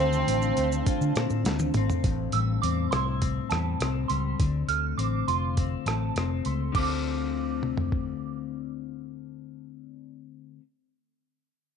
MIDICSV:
0, 0, Header, 1, 7, 480
1, 0, Start_track
1, 0, Key_signature, -1, "minor"
1, 0, Tempo, 588293
1, 1662, Time_signature, 4, 2, 24, 8
1, 9603, End_track
2, 0, Start_track
2, 0, Title_t, "Synth bell"
2, 0, Program_c, 0, 98
2, 1902, Note_on_c, 0, 88, 83
2, 2016, Note_off_c, 0, 88, 0
2, 2136, Note_on_c, 0, 86, 83
2, 2367, Note_off_c, 0, 86, 0
2, 2374, Note_on_c, 0, 84, 70
2, 2492, Note_off_c, 0, 84, 0
2, 2853, Note_on_c, 0, 81, 68
2, 3085, Note_off_c, 0, 81, 0
2, 3331, Note_on_c, 0, 84, 58
2, 3450, Note_off_c, 0, 84, 0
2, 3822, Note_on_c, 0, 89, 74
2, 3936, Note_off_c, 0, 89, 0
2, 4060, Note_on_c, 0, 86, 84
2, 4289, Note_off_c, 0, 86, 0
2, 4306, Note_on_c, 0, 84, 67
2, 4418, Note_off_c, 0, 84, 0
2, 4790, Note_on_c, 0, 81, 64
2, 5014, Note_off_c, 0, 81, 0
2, 5271, Note_on_c, 0, 84, 55
2, 5381, Note_off_c, 0, 84, 0
2, 5510, Note_on_c, 0, 86, 64
2, 6914, Note_off_c, 0, 86, 0
2, 9603, End_track
3, 0, Start_track
3, 0, Title_t, "Ambient pad"
3, 0, Program_c, 1, 92
3, 0, Note_on_c, 1, 62, 87
3, 0, Note_on_c, 1, 72, 85
3, 0, Note_on_c, 1, 77, 85
3, 0, Note_on_c, 1, 81, 100
3, 1628, Note_off_c, 1, 81, 0
3, 1631, Note_off_c, 1, 72, 0
3, 1631, Note_off_c, 1, 77, 0
3, 1640, Note_off_c, 1, 62, 0
3, 9603, End_track
4, 0, Start_track
4, 0, Title_t, "Clean electric guitar"
4, 0, Program_c, 2, 27
4, 0, Note_on_c, 2, 50, 81
4, 0, Note_on_c, 2, 57, 62
4, 0, Note_on_c, 2, 65, 71
4, 224, Note_on_c, 2, 60, 59
4, 467, Note_off_c, 2, 57, 0
4, 470, Note_on_c, 2, 57, 55
4, 703, Note_off_c, 2, 65, 0
4, 713, Note_on_c, 2, 65, 60
4, 947, Note_off_c, 2, 60, 0
4, 950, Note_on_c, 2, 60, 51
4, 1192, Note_off_c, 2, 57, 0
4, 1195, Note_on_c, 2, 57, 56
4, 1439, Note_off_c, 2, 60, 0
4, 1443, Note_on_c, 2, 60, 60
4, 1665, Note_off_c, 2, 50, 0
4, 1669, Note_on_c, 2, 45, 77
4, 1716, Note_off_c, 2, 65, 0
4, 1905, Note_off_c, 2, 57, 0
4, 1908, Note_on_c, 2, 55, 58
4, 2138, Note_off_c, 2, 60, 0
4, 2141, Note_on_c, 2, 60, 59
4, 2389, Note_on_c, 2, 64, 60
4, 2618, Note_off_c, 2, 60, 0
4, 2621, Note_on_c, 2, 60, 49
4, 2864, Note_off_c, 2, 55, 0
4, 2873, Note_on_c, 2, 55, 50
4, 3111, Note_off_c, 2, 60, 0
4, 3114, Note_on_c, 2, 60, 56
4, 3337, Note_off_c, 2, 55, 0
4, 3347, Note_on_c, 2, 55, 52
4, 3586, Note_off_c, 2, 45, 0
4, 3590, Note_on_c, 2, 50, 75
4, 3633, Note_off_c, 2, 55, 0
4, 3634, Note_off_c, 2, 64, 0
4, 3821, Note_on_c, 2, 57, 56
4, 4061, Note_off_c, 2, 60, 0
4, 4064, Note_on_c, 2, 60, 57
4, 4310, Note_on_c, 2, 65, 55
4, 4548, Note_off_c, 2, 60, 0
4, 4552, Note_on_c, 2, 60, 49
4, 4789, Note_off_c, 2, 57, 0
4, 4793, Note_on_c, 2, 57, 47
4, 5029, Note_off_c, 2, 60, 0
4, 5032, Note_on_c, 2, 60, 51
4, 5262, Note_off_c, 2, 57, 0
4, 5265, Note_on_c, 2, 57, 50
4, 5482, Note_off_c, 2, 50, 0
4, 5486, Note_on_c, 2, 50, 83
4, 5503, Note_off_c, 2, 57, 0
4, 5507, Note_on_c, 2, 57, 78
4, 5524, Note_off_c, 2, 60, 0
4, 5527, Note_on_c, 2, 60, 86
4, 5541, Note_off_c, 2, 65, 0
4, 5545, Note_on_c, 2, 65, 77
4, 8635, Note_off_c, 2, 50, 0
4, 8649, Note_off_c, 2, 57, 0
4, 8659, Note_off_c, 2, 60, 0
4, 8668, Note_off_c, 2, 65, 0
4, 9603, End_track
5, 0, Start_track
5, 0, Title_t, "Fiddle"
5, 0, Program_c, 3, 110
5, 0, Note_on_c, 3, 60, 111
5, 1187, Note_off_c, 3, 60, 0
5, 9603, End_track
6, 0, Start_track
6, 0, Title_t, "Fingered electric bass"
6, 0, Program_c, 4, 33
6, 0, Note_on_c, 4, 38, 86
6, 176, Note_off_c, 4, 38, 0
6, 224, Note_on_c, 4, 33, 88
6, 415, Note_off_c, 4, 33, 0
6, 470, Note_on_c, 4, 38, 80
6, 659, Note_off_c, 4, 38, 0
6, 822, Note_on_c, 4, 50, 87
6, 918, Note_off_c, 4, 50, 0
6, 944, Note_on_c, 4, 46, 77
6, 1039, Note_off_c, 4, 46, 0
6, 1062, Note_on_c, 4, 45, 74
6, 1178, Note_on_c, 4, 38, 93
6, 1190, Note_off_c, 4, 45, 0
6, 1372, Note_off_c, 4, 38, 0
6, 1420, Note_on_c, 4, 32, 94
6, 1517, Note_off_c, 4, 32, 0
6, 1663, Note_on_c, 4, 33, 87
6, 1855, Note_off_c, 4, 33, 0
6, 1904, Note_on_c, 4, 33, 90
6, 2095, Note_off_c, 4, 33, 0
6, 2143, Note_on_c, 4, 40, 90
6, 2335, Note_off_c, 4, 40, 0
6, 2383, Note_on_c, 4, 36, 83
6, 2767, Note_off_c, 4, 36, 0
6, 2864, Note_on_c, 4, 40, 81
6, 3056, Note_off_c, 4, 40, 0
6, 3105, Note_on_c, 4, 36, 82
6, 3296, Note_off_c, 4, 36, 0
6, 3344, Note_on_c, 4, 37, 77
6, 3535, Note_off_c, 4, 37, 0
6, 3585, Note_on_c, 4, 38, 93
6, 3776, Note_off_c, 4, 38, 0
6, 3821, Note_on_c, 4, 38, 80
6, 4013, Note_off_c, 4, 38, 0
6, 4061, Note_on_c, 4, 33, 72
6, 4254, Note_off_c, 4, 33, 0
6, 4305, Note_on_c, 4, 29, 74
6, 4688, Note_off_c, 4, 29, 0
6, 4780, Note_on_c, 4, 33, 78
6, 4973, Note_off_c, 4, 33, 0
6, 5024, Note_on_c, 4, 29, 71
6, 5216, Note_off_c, 4, 29, 0
6, 5267, Note_on_c, 4, 37, 67
6, 5458, Note_off_c, 4, 37, 0
6, 5505, Note_on_c, 4, 38, 77
6, 8615, Note_off_c, 4, 38, 0
6, 9603, End_track
7, 0, Start_track
7, 0, Title_t, "Drums"
7, 102, Note_on_c, 9, 82, 50
7, 184, Note_off_c, 9, 82, 0
7, 229, Note_on_c, 9, 42, 78
7, 229, Note_on_c, 9, 82, 76
7, 310, Note_off_c, 9, 42, 0
7, 310, Note_off_c, 9, 82, 0
7, 343, Note_on_c, 9, 82, 46
7, 424, Note_off_c, 9, 82, 0
7, 463, Note_on_c, 9, 42, 50
7, 463, Note_on_c, 9, 82, 49
7, 545, Note_off_c, 9, 42, 0
7, 545, Note_off_c, 9, 82, 0
7, 588, Note_on_c, 9, 82, 53
7, 669, Note_off_c, 9, 82, 0
7, 705, Note_on_c, 9, 42, 66
7, 705, Note_on_c, 9, 82, 75
7, 706, Note_on_c, 9, 36, 93
7, 787, Note_off_c, 9, 42, 0
7, 787, Note_off_c, 9, 82, 0
7, 788, Note_off_c, 9, 36, 0
7, 827, Note_on_c, 9, 82, 48
7, 908, Note_off_c, 9, 82, 0
7, 942, Note_on_c, 9, 42, 43
7, 942, Note_on_c, 9, 82, 45
7, 955, Note_on_c, 9, 37, 89
7, 1024, Note_off_c, 9, 42, 0
7, 1024, Note_off_c, 9, 82, 0
7, 1037, Note_off_c, 9, 37, 0
7, 1059, Note_on_c, 9, 82, 46
7, 1140, Note_off_c, 9, 82, 0
7, 1185, Note_on_c, 9, 42, 56
7, 1185, Note_on_c, 9, 82, 61
7, 1193, Note_on_c, 9, 38, 48
7, 1266, Note_off_c, 9, 42, 0
7, 1266, Note_off_c, 9, 82, 0
7, 1275, Note_off_c, 9, 38, 0
7, 1298, Note_on_c, 9, 82, 50
7, 1303, Note_on_c, 9, 48, 58
7, 1379, Note_off_c, 9, 82, 0
7, 1384, Note_off_c, 9, 48, 0
7, 1419, Note_on_c, 9, 42, 51
7, 1419, Note_on_c, 9, 82, 44
7, 1422, Note_on_c, 9, 45, 87
7, 1500, Note_off_c, 9, 42, 0
7, 1500, Note_off_c, 9, 82, 0
7, 1504, Note_off_c, 9, 45, 0
7, 1546, Note_on_c, 9, 43, 76
7, 1546, Note_on_c, 9, 82, 42
7, 1628, Note_off_c, 9, 43, 0
7, 1628, Note_off_c, 9, 82, 0
7, 1664, Note_on_c, 9, 42, 65
7, 1665, Note_on_c, 9, 36, 116
7, 1745, Note_off_c, 9, 42, 0
7, 1747, Note_off_c, 9, 36, 0
7, 1896, Note_on_c, 9, 42, 55
7, 1977, Note_off_c, 9, 42, 0
7, 2150, Note_on_c, 9, 42, 76
7, 2231, Note_off_c, 9, 42, 0
7, 2384, Note_on_c, 9, 42, 46
7, 2389, Note_on_c, 9, 37, 87
7, 2466, Note_off_c, 9, 42, 0
7, 2470, Note_off_c, 9, 37, 0
7, 2625, Note_on_c, 9, 42, 66
7, 2627, Note_on_c, 9, 36, 78
7, 2706, Note_off_c, 9, 42, 0
7, 2709, Note_off_c, 9, 36, 0
7, 2861, Note_on_c, 9, 42, 44
7, 2873, Note_on_c, 9, 37, 83
7, 2942, Note_off_c, 9, 42, 0
7, 2955, Note_off_c, 9, 37, 0
7, 3104, Note_on_c, 9, 42, 62
7, 3118, Note_on_c, 9, 37, 81
7, 3186, Note_off_c, 9, 42, 0
7, 3199, Note_off_c, 9, 37, 0
7, 3342, Note_on_c, 9, 42, 42
7, 3423, Note_off_c, 9, 42, 0
7, 3587, Note_on_c, 9, 36, 115
7, 3587, Note_on_c, 9, 42, 70
7, 3668, Note_off_c, 9, 42, 0
7, 3669, Note_off_c, 9, 36, 0
7, 3823, Note_on_c, 9, 42, 53
7, 3905, Note_off_c, 9, 42, 0
7, 4071, Note_on_c, 9, 42, 62
7, 4153, Note_off_c, 9, 42, 0
7, 4310, Note_on_c, 9, 42, 43
7, 4392, Note_off_c, 9, 42, 0
7, 4546, Note_on_c, 9, 42, 65
7, 4549, Note_on_c, 9, 36, 78
7, 4628, Note_off_c, 9, 42, 0
7, 4631, Note_off_c, 9, 36, 0
7, 4784, Note_on_c, 9, 42, 45
7, 4796, Note_on_c, 9, 37, 79
7, 4865, Note_off_c, 9, 42, 0
7, 4878, Note_off_c, 9, 37, 0
7, 5026, Note_on_c, 9, 42, 50
7, 5040, Note_on_c, 9, 37, 72
7, 5108, Note_off_c, 9, 42, 0
7, 5121, Note_off_c, 9, 37, 0
7, 5262, Note_on_c, 9, 42, 44
7, 5343, Note_off_c, 9, 42, 0
7, 5506, Note_on_c, 9, 36, 91
7, 5506, Note_on_c, 9, 49, 73
7, 5587, Note_off_c, 9, 36, 0
7, 5588, Note_off_c, 9, 49, 0
7, 6224, Note_on_c, 9, 47, 43
7, 6306, Note_off_c, 9, 47, 0
7, 6344, Note_on_c, 9, 43, 67
7, 6425, Note_off_c, 9, 43, 0
7, 6464, Note_on_c, 9, 36, 75
7, 6545, Note_off_c, 9, 36, 0
7, 9603, End_track
0, 0, End_of_file